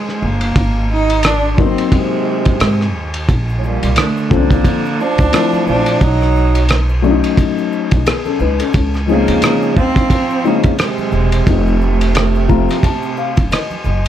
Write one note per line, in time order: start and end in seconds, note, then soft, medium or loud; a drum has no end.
0.00 0.26 G#3 medium
0.09 cross-stick soft
0.22 0.53 G1 medium
0.22 0.91 A#3 medium
0.41 ride medium
0.56 1.74 G#1 medium
0.56 kick loud
0.56 ride medium
0.93 1.28 D#4 loud
1.10 ride medium
1.23 1.54 D4 medium
1.23 cross-stick loud
1.23 hi-hat pedal soft
1.23 ride medium
1.54 2.54 F#3 medium
1.54 2.55 A#3 medium
1.54 1.63 D4 medium
1.58 1.66 B3 soft
1.58 1.97 C4 medium
1.58 2.55 D#4 medium
1.58 kick medium
1.65 2.58 C4 medium
1.78 ride medium
1.92 2.95 C3 medium
1.92 2.96 G#3 medium
1.92 kick medium
1.92 ride medium
2.45 2.59 G#1 medium
2.45 kick medium
2.45 ride medium
2.60 2.95 G#2 medium
2.60 cross-stick loud
2.60 hi-hat pedal medium
2.60 ride medium
2.81 cross-stick soft
2.95 3.26 D#2 medium
3.14 ride medium
3.29 3.79 A#1 loud
3.29 kick medium
3.29 ride medium
3.29 shaker medium
3.49 shaker soft
3.57 3.67 A2 soft
3.57 3.67 F#3 medium
3.64 3.98 A#2 medium
3.64 3.98 G3 medium
3.64 high conga soft
3.64 shaker soft
3.83 3.96 C2 medium
3.83 ride medium
3.83 shaker soft
3.96 4.33 D3 medium
3.96 4.34 A3 medium
3.96 cross-stick loud
3.96 hi-hat pedal medium
3.96 ride medium
3.96 low conga medium
3.96 shaker medium
4.17 shaker soft
4.30 4.62 C2 medium
4.30 5.02 D3 medium
4.30 4.80 F3 medium
4.30 5.02 A#3 medium
4.30 4.81 C4 medium
4.30 4.39 C#4 medium
4.30 4.81 A4 medium
4.30 kick medium
4.30 low conga medium
4.30 shaker soft
4.38 4.85 D4 medium
4.51 kick medium
4.51 ride medium
4.51 shaker soft
4.64 kick medium
4.64 ride medium
4.64 shaker medium
4.85 shaker soft
5.00 5.67 F3 medium
5.00 5.68 D4 loud
5.00 shaker soft
5.18 5.32 D2 medium
5.18 kick medium
5.18 ride soft
5.18 high conga medium
5.18 shaker soft
5.32 6.01 F3 medium
5.32 6.01 A3 medium
5.32 6.01 C4 medium
5.32 6.02 E4 medium
5.32 cross-stick loud
5.32 hi-hat pedal medium
5.32 ride medium
5.32 shaker medium
5.53 high conga medium
5.53 shaker soft
5.67 5.99 A#1 medium
5.67 6.04 F3 medium
5.67 6.05 D4 medium
5.67 high conga soft
5.67 low conga medium
5.67 shaker soft
5.86 ride medium
5.86 shaker soft
6.01 7.19 B1 loud
6.01 6.70 F#3 medium
6.01 6.71 D#4 loud
6.01 kick medium
6.01 ride medium
6.01 shaker medium
6.21 cross-stick soft
6.21 shaker soft
6.36 high conga soft
6.36 shaker soft
6.55 ride medium
6.55 shaker soft
6.69 cross-stick loud
6.69 hi-hat pedal medium
6.69 ride medium
6.69 low conga medium
6.69 shaker medium
6.89 shaker soft
7.02 8.00 F#3 medium
7.02 8.00 A3 medium
7.02 8.00 C#4 medium
7.02 7.11 D4 medium
7.02 low conga medium
7.02 shaker soft
7.11 8.04 D#4 medium
7.23 ride medium
7.23 shaker soft
7.37 kick medium
7.37 ride medium
7.37 shaker medium
7.58 shaker soft
7.72 shaker soft
7.91 8.05 B1 medium
7.91 kick medium
7.91 ride medium
7.91 high conga medium
7.91 shaker soft
8.06 8.26 B3 medium
8.06 8.25 G#4 medium
8.06 cross-stick loud
8.06 hi-hat pedal medium
8.06 ride medium
8.06 shaker medium
8.25 8.40 C#4 medium
8.25 8.39 A4 medium
8.25 high conga medium
8.25 shaker soft
8.39 8.58 C#2 medium
8.39 8.60 D#4 medium
8.39 8.59 B4 medium
8.39 high conga soft
8.39 low conga medium
8.39 shaker soft
8.59 8.93 C#4 medium
8.59 8.92 A4 medium
8.59 ride medium
8.59 shaker soft
8.73 9.24 C#2 medium
8.73 kick loud
8.73 ride medium
8.73 shaker medium
8.94 cross-stick soft
8.94 shaker soft
9.07 9.73 C#3 medium
9.07 10.04 F3 medium
9.07 10.05 G#3 medium
9.07 9.74 A#3 loud
9.07 10.05 C4 medium
9.07 10.05 D#4 medium
9.07 high conga soft
9.07 shaker soft
9.28 9.41 D#2 medium
9.28 ride medium
9.28 shaker soft
9.42 cross-stick loud
9.42 hi-hat pedal medium
9.42 ride medium
9.42 low conga medium
9.42 shaker medium
9.62 shaker soft
9.76 10.08 D#2 medium
9.76 10.46 F3 medium
9.76 10.48 C4 loud
9.76 kick medium
9.76 low conga medium
9.76 shaker soft
9.96 kick medium
9.96 cross-stick soft
9.96 ride medium
9.96 shaker soft
10.10 kick medium
10.10 ride medium
10.10 shaker medium
10.30 shaker soft
10.44 10.78 C#3 medium
10.44 10.70 F3 medium
10.44 10.70 G#3 medium
10.44 10.80 A#3 medium
10.44 10.70 C4 medium
10.44 10.70 D#4 medium
10.44 shaker soft
10.63 10.78 F2 medium
10.63 kick medium
10.63 ride medium
10.63 high conga medium
10.63 shaker soft
10.79 11.48 C3 medium
10.79 11.50 G#3 medium
10.79 cross-stick loud
10.79 hi-hat pedal medium
10.79 ride medium
10.79 shaker medium
10.98 high conga medium
10.98 shaker soft
11.12 11.44 E1 medium
11.12 high conga soft
11.12 low conga medium
11.12 shaker soft
11.32 ride medium
11.32 shaker soft
11.47 12.65 F1 loud
11.47 13.52 C3 medium
11.47 11.72 F3 medium
11.47 11.72 A3 medium
11.47 13.52 A3 medium
11.47 11.73 C4 medium
11.47 11.73 D#4 medium
11.47 kick medium
11.47 ride medium
11.47 shaker medium
11.67 shaker soft
11.81 high conga soft
11.81 shaker soft
12.01 ride medium
12.01 shaker soft
12.15 cross-stick loud
12.15 hi-hat pedal soft
12.15 ride medium
12.15 low conga medium
12.15 shaker medium
12.35 shaker soft
12.48 12.74 F3 medium
12.48 12.75 A3 medium
12.48 12.75 C4 medium
12.48 12.75 F4 medium
12.48 12.81 A#5 medium
12.48 kick medium
12.48 low conga medium
12.48 shaker soft
12.69 cross-stick soft
12.69 ride medium
12.69 shaker soft
12.83 13.15 A5 medium
12.83 kick medium
12.83 ride medium
12.83 shaker medium
13.03 shaker soft
13.17 13.49 F5 medium
13.17 shaker soft
13.37 13.51 F1 medium
13.37 kick medium
13.37 ride medium
13.37 high conga medium
13.37 shaker soft
13.51 13.83 D#5 medium
13.51 cross-stick loud
13.51 hi-hat pedal medium
13.51 ride medium
13.51 shaker medium
13.70 high conga medium
13.70 shaker soft
13.84 14.04 F#1 medium
13.84 14.08 D#5 medium
13.84 high conga soft
13.84 low conga medium
13.84 shaker soft
14.04 shaker soft